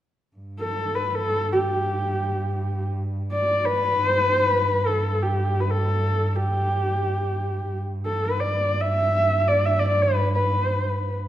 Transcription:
0.37 4.03 G2 medium
0.60 0.97 A4 medium
0.95 1.10 B4 medium
1.10 1.16 B4 soft
1.15 1.52 A4 medium
1.52 2.85 G4 medium
3.32 3.67 D5 medium
3.65 4.07 B4 medium
4.04 7.69 G2 medium
4.04 4.18 C5 medium
4.18 4.30 B4 medium
4.30 4.42 C5 medium
4.42 4.88 B4 medium
4.86 5.24 A4 medium
5.23 5.62 G4 medium
5.60 5.72 B4 medium
5.70 6.37 A4 medium
6.36 7.81 G4 medium
7.69 11.28 G2 medium
8.06 8.26 A4 medium
8.24 8.41 B4 medium
8.40 8.82 D5 medium
8.81 9.49 E5 medium
9.48 9.67 D5 medium
9.66 9.81 E5 medium
9.79 9.87 D5 medium
9.88 10.04 D5 medium
10.02 10.33 B4 medium
10.35 11.18 B4 medium

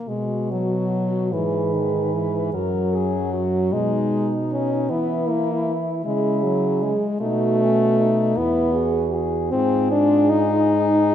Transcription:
0.08 1.35 B2 soft
0.08 0.53 G#3 soft
0.08 1.34 F#4 soft
0.51 1.34 F#3 medium
1.33 2.53 G#2 soft
1.33 1.75 E3 soft
1.33 2.57 G#4 soft
1.33 2.53 B4 soft
1.74 2.15 D#3 soft
2.14 2.53 E3 soft
2.53 3.74 F#2 soft
2.53 3.74 F#3 medium
2.53 3.74 F#4 soft
2.53 2.95 A#4 soft
2.94 3.32 G#4 soft
3.33 3.74 F#4 soft
3.72 4.92 B2 soft
3.72 4.35 G#3 medium
3.72 4.92 D#4 soft
4.52 4.92 C#4 medium
4.90 6.05 E3 soft
4.90 5.29 B3 medium
4.90 6.05 E4 soft
5.27 5.78 A#3 medium
6.05 6.93 C#3 soft
6.05 6.45 G#3 medium
6.05 6.93 E4 soft
6.05 7.04 G#4 medium
6.44 6.84 F#3 medium
6.83 7.20 G#3 medium
7.21 8.33 B2 soft
7.21 8.38 A3 medium
7.21 7.63 D#4 soft
7.21 8.08 F#4 medium
7.62 8.01 C#4 soft
7.99 8.39 D#4 soft
8.37 9.50 E2 soft
8.37 9.14 B3 medium
8.37 8.76 E4 soft
8.37 8.78 E4 soft
8.74 9.16 F#4 soft
8.74 9.14 G#4 medium
9.13 9.55 F#4 soft
9.13 9.52 G#4 soft
9.51 11.15 G#2 medium
9.51 9.88 C4 medium
9.51 10.71 F4 medium
9.51 11.15 G#4 medium
9.91 10.31 D4 medium
10.30 11.15 D#4 medium
10.69 11.11 D#4 soft
11.10 11.15 F4 soft

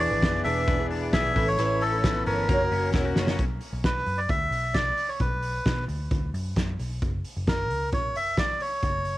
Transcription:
0.00 0.11 E3 medium
0.00 1.35 E3 medium
0.00 0.22 B3 medium
0.00 0.11 D4 medium
0.00 0.44 D4 medium
0.00 1.32 E4 medium
0.00 0.11 G#4 medium
0.00 1.32 G#4 medium
0.00 0.41 D5 medium
0.00 1.33 D5 medium
0.00 open hi-hat medium
0.11 0.21 G#1 medium
0.11 0.44 D4 soft
0.11 0.45 G#4 medium
0.11 0.45 B4 medium
0.23 0.42 F#1 medium
0.23 0.67 B3 medium
0.23 kick loud
0.23 snare loud
0.23 hi-hat pedal medium
0.23 ride medium
0.44 1.13 E1 medium
0.44 0.79 E3 medium
0.44 0.90 D4 medium
0.44 0.79 D4 medium
0.44 0.79 G#4 medium
0.44 0.78 B4 medium
0.44 0.87 E5 loud
0.44 open hi-hat medium
0.68 1.40 B3 medium
0.68 kick loud
0.68 hi-hat pedal medium
0.68 ride medium
0.79 1.12 D4 soft
0.79 1.13 G#4 medium
0.79 1.13 B4 medium
0.91 1.40 D4 medium
0.91 open hi-hat medium
1.12 1.32 B1 medium
1.12 1.35 E3 medium
1.12 1.36 D4 medium
1.12 1.40 G#4 medium
1.12 1.36 G#4 medium
1.12 1.36 B4 medium
1.12 1.48 E5 loud
1.12 kick loud
1.12 snare loud
1.12 hi-hat pedal medium
1.12 ride medium
1.34 1.55 A1 medium
1.34 1.58 E3 medium
1.34 1.57 A3 medium
1.34 2.46 C#4 medium
1.34 1.58 C#4 medium
1.34 1.58 E4 medium
1.34 2.46 A4 medium
1.34 2.47 B4 medium
1.34 1.59 B4 medium
1.34 kick loud
1.34 open hi-hat medium
1.47 1.82 C#5 loud
1.58 2.23 A1 loud
1.58 2.54 E3 medium
1.58 1.92 A3 medium
1.58 1.93 C#4 medium
1.58 1.93 E4 medium
1.58 1.91 B4 medium
1.58 hi-hat pedal medium
1.58 ride medium
1.81 2.26 C#4 medium
1.81 2.23 A4 medium
1.81 open hi-hat medium
1.92 2.26 C#4 medium
1.92 2.26 E4 soft
1.92 2.26 B4 medium
2.03 2.49 B3 medium
2.03 kick loud
2.03 snare loud
2.03 hi-hat pedal medium
2.03 ride medium
2.26 2.46 G1 medium
2.26 2.49 A3 medium
2.26 2.54 C#4 medium
2.26 2.49 C#4 medium
2.26 2.49 E4 medium
2.26 2.90 A#4 medium
2.26 2.50 B4 medium
2.26 open hi-hat medium
2.47 2.68 F#1 loud
2.47 2.60 F#2 medium
2.47 2.61 F#3 medium
2.47 3.44 A#3 medium
2.47 2.61 A#3 medium
2.47 3.37 C#4 medium
2.47 2.60 C#4 medium
2.47 3.37 F#4 medium
2.47 2.60 F#4 medium
2.47 3.38 A#4 medium
2.47 2.59 A#4 medium
2.47 kick loud
2.47 hi-hat pedal medium
2.47 ride medium
2.60 2.93 A#3 soft
2.60 2.94 C#4 medium
2.60 2.94 F#4 soft
2.60 2.94 A#4 medium
2.72 2.91 F#1 medium
2.72 3.16 C#4 medium
2.72 open hi-hat medium
2.94 3.13 E1 medium
2.94 3.15 A#3 medium
2.94 3.16 C#4 medium
2.94 3.05 E4 medium
2.94 3.17 F#4 medium
2.94 3.17 A#4 medium
2.94 kick loud
2.94 snare medium
3.05 3.44 F#4 medium
3.16 3.36 F#1 medium
3.16 3.39 A#3 medium
3.16 3.40 C#4 medium
3.16 3.44 C#4 medium
3.16 3.40 F#4 medium
3.16 3.40 A#4 medium
3.16 snare medium
3.27 snare medium
3.39 3.58 B1 loud
3.39 kick loud
3.39 closed hi-hat medium
3.61 open hi-hat medium
3.73 4.02 B1 medium
3.84 4.20 B4 medium
3.84 kick loud
3.84 snare loud
3.84 closed hi-hat medium
4.06 4.26 F#2 medium
4.06 open hi-hat medium
4.18 4.30 D5 medium
4.29 4.49 D2 medium
4.29 4.76 E5 loud
4.29 kick loud
4.29 closed hi-hat medium
4.51 4.90 B1 medium
4.51 open hi-hat medium
4.74 5.10 D5 loud
4.74 kick loud
4.74 snare medium
4.74 closed hi-hat medium
4.97 open hi-hat medium
5.09 5.21 C#5 medium
5.20 5.59 B1 loud
5.20 5.84 B4 medium
5.20 kick loud
5.20 closed hi-hat medium
5.42 open hi-hat medium
5.66 5.85 B2 medium
5.66 kick loud
5.66 snare loud
5.66 closed hi-hat medium
5.88 6.08 D2 medium
5.88 open hi-hat medium
6.11 6.30 D2 medium
6.11 kick loud
6.11 closed hi-hat medium
6.34 6.53 F#2 medium
6.34 open hi-hat medium
6.56 6.76 F#2 medium
6.56 kick loud
6.56 snare medium
6.56 closed hi-hat medium
6.79 6.99 B1 medium
6.79 open hi-hat medium
7.02 7.21 F#1 medium
7.02 kick medium
7.02 closed hi-hat medium
7.24 open hi-hat medium
7.36 7.70 F#1 medium
7.47 7.90 A#4 medium
7.47 kick loud
7.47 snare loud
7.47 closed hi-hat medium
7.70 7.92 C#2 medium
7.70 open hi-hat medium
7.92 8.15 A#1 medium
7.92 8.16 C#5 medium
7.92 kick loud
7.92 closed hi-hat medium
8.15 8.53 F#1 medium
8.15 8.39 E5 loud
8.15 open hi-hat medium
8.37 8.61 D5 loud
8.37 kick loud
8.37 snare medium
8.37 closed hi-hat medium
8.60 9.18 C#5 medium
8.60 open hi-hat medium
8.83 9.18 F#1 loud
8.83 kick medium
8.83 closed hi-hat medium
9.05 open hi-hat medium

